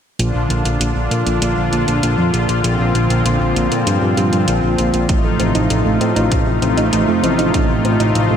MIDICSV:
0, 0, Header, 1, 5, 480
1, 0, Start_track
1, 0, Key_signature, -2, "major"
1, 0, Tempo, 612245
1, 153, Time_signature, 4, 2, 24, 8
1, 6560, End_track
2, 0, Start_track
2, 0, Title_t, "Synth arpeggio sound"
2, 0, Program_c, 0, 84
2, 4111, Note_on_c, 0, 57, 73
2, 4226, Note_off_c, 0, 57, 0
2, 4230, Note_on_c, 0, 60, 101
2, 4318, Note_off_c, 0, 60, 0
2, 4350, Note_on_c, 0, 63, 100
2, 4465, Note_off_c, 0, 63, 0
2, 4589, Note_on_c, 0, 57, 78
2, 4705, Note_off_c, 0, 57, 0
2, 4709, Note_on_c, 0, 60, 101
2, 4797, Note_off_c, 0, 60, 0
2, 4828, Note_on_c, 0, 63, 102
2, 4944, Note_off_c, 0, 63, 0
2, 5069, Note_on_c, 0, 57, 78
2, 5185, Note_off_c, 0, 57, 0
2, 5189, Note_on_c, 0, 60, 98
2, 5277, Note_off_c, 0, 60, 0
2, 5311, Note_on_c, 0, 63, 99
2, 5426, Note_off_c, 0, 63, 0
2, 5553, Note_on_c, 0, 57, 76
2, 5667, Note_off_c, 0, 57, 0
2, 5669, Note_on_c, 0, 60, 99
2, 5757, Note_off_c, 0, 60, 0
2, 5789, Note_on_c, 0, 63, 105
2, 5905, Note_off_c, 0, 63, 0
2, 6030, Note_on_c, 0, 57, 75
2, 6145, Note_off_c, 0, 57, 0
2, 6150, Note_on_c, 0, 60, 98
2, 6238, Note_off_c, 0, 60, 0
2, 6270, Note_on_c, 0, 63, 100
2, 6385, Note_off_c, 0, 63, 0
2, 6513, Note_on_c, 0, 57, 73
2, 6560, Note_off_c, 0, 57, 0
2, 6560, End_track
3, 0, Start_track
3, 0, Title_t, "Analog synth pad"
3, 0, Program_c, 1, 89
3, 152, Note_on_c, 1, 62, 72
3, 152, Note_on_c, 1, 65, 84
3, 153, Note_on_c, 1, 46, 77
3, 153, Note_on_c, 1, 50, 73
3, 154, Note_on_c, 1, 53, 72
3, 2053, Note_off_c, 1, 62, 0
3, 2072, Note_on_c, 1, 60, 73
3, 3961, Note_off_c, 1, 65, 0
3, 3962, Note_off_c, 1, 46, 0
3, 3962, Note_off_c, 1, 50, 0
3, 3973, Note_off_c, 1, 60, 0
3, 3991, Note_on_c, 1, 48, 80
3, 3992, Note_on_c, 1, 57, 74
3, 3992, Note_on_c, 1, 63, 71
3, 3992, Note_on_c, 1, 65, 88
3, 6560, Note_off_c, 1, 48, 0
3, 6560, Note_off_c, 1, 53, 0
3, 6560, Note_off_c, 1, 57, 0
3, 6560, Note_off_c, 1, 63, 0
3, 6560, Note_off_c, 1, 65, 0
3, 6560, End_track
4, 0, Start_track
4, 0, Title_t, "Analog synth bass"
4, 0, Program_c, 2, 38
4, 151, Note_on_c, 2, 34, 97
4, 255, Note_off_c, 2, 34, 0
4, 272, Note_on_c, 2, 34, 74
4, 375, Note_off_c, 2, 34, 0
4, 392, Note_on_c, 2, 34, 94
4, 495, Note_off_c, 2, 34, 0
4, 512, Note_on_c, 2, 34, 79
4, 615, Note_off_c, 2, 34, 0
4, 630, Note_on_c, 2, 34, 98
4, 734, Note_off_c, 2, 34, 0
4, 751, Note_on_c, 2, 34, 72
4, 854, Note_off_c, 2, 34, 0
4, 872, Note_on_c, 2, 46, 90
4, 975, Note_off_c, 2, 46, 0
4, 992, Note_on_c, 2, 34, 78
4, 1095, Note_off_c, 2, 34, 0
4, 1111, Note_on_c, 2, 34, 102
4, 1215, Note_off_c, 2, 34, 0
4, 1232, Note_on_c, 2, 34, 75
4, 1335, Note_off_c, 2, 34, 0
4, 1352, Note_on_c, 2, 34, 93
4, 1455, Note_off_c, 2, 34, 0
4, 1474, Note_on_c, 2, 34, 83
4, 1576, Note_off_c, 2, 34, 0
4, 1592, Note_on_c, 2, 34, 97
4, 1695, Note_off_c, 2, 34, 0
4, 1712, Note_on_c, 2, 41, 76
4, 1815, Note_off_c, 2, 41, 0
4, 1831, Note_on_c, 2, 34, 91
4, 1934, Note_off_c, 2, 34, 0
4, 1952, Note_on_c, 2, 34, 78
4, 2055, Note_off_c, 2, 34, 0
4, 2072, Note_on_c, 2, 34, 101
4, 2175, Note_off_c, 2, 34, 0
4, 2191, Note_on_c, 2, 34, 74
4, 2295, Note_off_c, 2, 34, 0
4, 2311, Note_on_c, 2, 34, 95
4, 2415, Note_off_c, 2, 34, 0
4, 2431, Note_on_c, 2, 34, 83
4, 2534, Note_off_c, 2, 34, 0
4, 2552, Note_on_c, 2, 34, 96
4, 2655, Note_off_c, 2, 34, 0
4, 2672, Note_on_c, 2, 34, 73
4, 2775, Note_off_c, 2, 34, 0
4, 2793, Note_on_c, 2, 34, 91
4, 2895, Note_off_c, 2, 34, 0
4, 2912, Note_on_c, 2, 46, 79
4, 3015, Note_off_c, 2, 46, 0
4, 3031, Note_on_c, 2, 43, 99
4, 3134, Note_off_c, 2, 43, 0
4, 3152, Note_on_c, 2, 43, 74
4, 3255, Note_off_c, 2, 43, 0
4, 3272, Note_on_c, 2, 43, 92
4, 3375, Note_off_c, 2, 43, 0
4, 3392, Note_on_c, 2, 43, 81
4, 3495, Note_off_c, 2, 43, 0
4, 3513, Note_on_c, 2, 34, 95
4, 3615, Note_off_c, 2, 34, 0
4, 3634, Note_on_c, 2, 34, 77
4, 3736, Note_off_c, 2, 34, 0
4, 3754, Note_on_c, 2, 34, 92
4, 3856, Note_off_c, 2, 34, 0
4, 3873, Note_on_c, 2, 34, 78
4, 3976, Note_off_c, 2, 34, 0
4, 3992, Note_on_c, 2, 33, 100
4, 4095, Note_off_c, 2, 33, 0
4, 4113, Note_on_c, 2, 33, 75
4, 4215, Note_off_c, 2, 33, 0
4, 4233, Note_on_c, 2, 33, 96
4, 4336, Note_off_c, 2, 33, 0
4, 4354, Note_on_c, 2, 33, 82
4, 4456, Note_off_c, 2, 33, 0
4, 4473, Note_on_c, 2, 33, 99
4, 4576, Note_off_c, 2, 33, 0
4, 4593, Note_on_c, 2, 33, 73
4, 4695, Note_off_c, 2, 33, 0
4, 4712, Note_on_c, 2, 45, 92
4, 4815, Note_off_c, 2, 45, 0
4, 4833, Note_on_c, 2, 33, 80
4, 4936, Note_off_c, 2, 33, 0
4, 4952, Note_on_c, 2, 33, 104
4, 5055, Note_off_c, 2, 33, 0
4, 5073, Note_on_c, 2, 33, 73
4, 5175, Note_off_c, 2, 33, 0
4, 5194, Note_on_c, 2, 33, 91
4, 5296, Note_off_c, 2, 33, 0
4, 5312, Note_on_c, 2, 33, 82
4, 5415, Note_off_c, 2, 33, 0
4, 5432, Note_on_c, 2, 33, 101
4, 5535, Note_off_c, 2, 33, 0
4, 5553, Note_on_c, 2, 41, 77
4, 5656, Note_off_c, 2, 41, 0
4, 5672, Note_on_c, 2, 33, 92
4, 5775, Note_off_c, 2, 33, 0
4, 5792, Note_on_c, 2, 33, 79
4, 5895, Note_off_c, 2, 33, 0
4, 5913, Note_on_c, 2, 33, 104
4, 6015, Note_off_c, 2, 33, 0
4, 6032, Note_on_c, 2, 33, 78
4, 6135, Note_off_c, 2, 33, 0
4, 6152, Note_on_c, 2, 33, 93
4, 6255, Note_off_c, 2, 33, 0
4, 6274, Note_on_c, 2, 33, 82
4, 6376, Note_off_c, 2, 33, 0
4, 6394, Note_on_c, 2, 33, 103
4, 6496, Note_off_c, 2, 33, 0
4, 6515, Note_on_c, 2, 33, 76
4, 6560, Note_off_c, 2, 33, 0
4, 6560, End_track
5, 0, Start_track
5, 0, Title_t, "Drums"
5, 153, Note_on_c, 9, 42, 92
5, 231, Note_off_c, 9, 42, 0
5, 393, Note_on_c, 9, 42, 67
5, 472, Note_off_c, 9, 42, 0
5, 513, Note_on_c, 9, 42, 67
5, 591, Note_off_c, 9, 42, 0
5, 634, Note_on_c, 9, 42, 95
5, 712, Note_off_c, 9, 42, 0
5, 873, Note_on_c, 9, 42, 65
5, 951, Note_off_c, 9, 42, 0
5, 992, Note_on_c, 9, 42, 66
5, 1070, Note_off_c, 9, 42, 0
5, 1113, Note_on_c, 9, 42, 94
5, 1191, Note_off_c, 9, 42, 0
5, 1353, Note_on_c, 9, 42, 65
5, 1432, Note_off_c, 9, 42, 0
5, 1473, Note_on_c, 9, 42, 63
5, 1551, Note_off_c, 9, 42, 0
5, 1593, Note_on_c, 9, 42, 97
5, 1671, Note_off_c, 9, 42, 0
5, 1833, Note_on_c, 9, 42, 66
5, 1911, Note_off_c, 9, 42, 0
5, 1952, Note_on_c, 9, 42, 66
5, 2030, Note_off_c, 9, 42, 0
5, 2072, Note_on_c, 9, 42, 92
5, 2150, Note_off_c, 9, 42, 0
5, 2313, Note_on_c, 9, 42, 68
5, 2391, Note_off_c, 9, 42, 0
5, 2433, Note_on_c, 9, 42, 69
5, 2511, Note_off_c, 9, 42, 0
5, 2553, Note_on_c, 9, 42, 95
5, 2631, Note_off_c, 9, 42, 0
5, 2794, Note_on_c, 9, 42, 64
5, 2873, Note_off_c, 9, 42, 0
5, 2914, Note_on_c, 9, 42, 67
5, 2992, Note_off_c, 9, 42, 0
5, 3033, Note_on_c, 9, 42, 94
5, 3111, Note_off_c, 9, 42, 0
5, 3272, Note_on_c, 9, 42, 68
5, 3351, Note_off_c, 9, 42, 0
5, 3392, Note_on_c, 9, 42, 65
5, 3471, Note_off_c, 9, 42, 0
5, 3510, Note_on_c, 9, 42, 92
5, 3589, Note_off_c, 9, 42, 0
5, 3751, Note_on_c, 9, 42, 69
5, 3829, Note_off_c, 9, 42, 0
5, 3870, Note_on_c, 9, 42, 65
5, 3949, Note_off_c, 9, 42, 0
5, 3991, Note_on_c, 9, 42, 91
5, 3992, Note_on_c, 9, 36, 127
5, 4069, Note_off_c, 9, 42, 0
5, 4070, Note_off_c, 9, 36, 0
5, 4230, Note_on_c, 9, 42, 66
5, 4309, Note_off_c, 9, 42, 0
5, 4351, Note_on_c, 9, 42, 66
5, 4430, Note_off_c, 9, 42, 0
5, 4471, Note_on_c, 9, 42, 92
5, 4550, Note_off_c, 9, 42, 0
5, 4712, Note_on_c, 9, 42, 65
5, 4790, Note_off_c, 9, 42, 0
5, 4832, Note_on_c, 9, 42, 66
5, 4911, Note_off_c, 9, 42, 0
5, 4952, Note_on_c, 9, 36, 117
5, 4952, Note_on_c, 9, 42, 94
5, 5030, Note_off_c, 9, 42, 0
5, 5031, Note_off_c, 9, 36, 0
5, 5192, Note_on_c, 9, 42, 66
5, 5271, Note_off_c, 9, 42, 0
5, 5312, Note_on_c, 9, 42, 63
5, 5390, Note_off_c, 9, 42, 0
5, 5432, Note_on_c, 9, 42, 93
5, 5510, Note_off_c, 9, 42, 0
5, 5673, Note_on_c, 9, 42, 68
5, 5752, Note_off_c, 9, 42, 0
5, 5793, Note_on_c, 9, 42, 65
5, 5871, Note_off_c, 9, 42, 0
5, 5913, Note_on_c, 9, 36, 123
5, 5913, Note_on_c, 9, 42, 87
5, 5991, Note_off_c, 9, 36, 0
5, 5992, Note_off_c, 9, 42, 0
5, 6153, Note_on_c, 9, 42, 63
5, 6232, Note_off_c, 9, 42, 0
5, 6273, Note_on_c, 9, 42, 66
5, 6351, Note_off_c, 9, 42, 0
5, 6392, Note_on_c, 9, 42, 90
5, 6471, Note_off_c, 9, 42, 0
5, 6560, End_track
0, 0, End_of_file